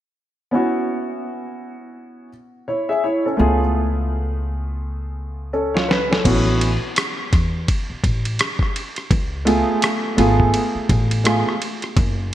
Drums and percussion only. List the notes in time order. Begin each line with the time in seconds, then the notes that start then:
5.77 snare
5.91 snare
6.13 snare
6.25 kick, crash, ride
6.61 ride
6.96 cross-stick, hi-hat pedal, ride
7.33 kick, cross-stick, ride
7.68 kick, ride
8.04 kick, ride
8.25 ride
8.39 cross-stick, hi-hat pedal, ride
8.59 kick, cross-stick
8.76 ride
8.96 cross-stick, ride
9.11 kick, ride
9.47 ride
9.82 cross-stick, hi-hat pedal, ride
10.18 ride
10.40 kick
10.54 ride
10.89 kick, ride
11.11 ride
11.25 cross-stick, hi-hat pedal, ride
11.49 cross-stick
11.62 ride
11.82 cross-stick, ride
11.97 kick, ride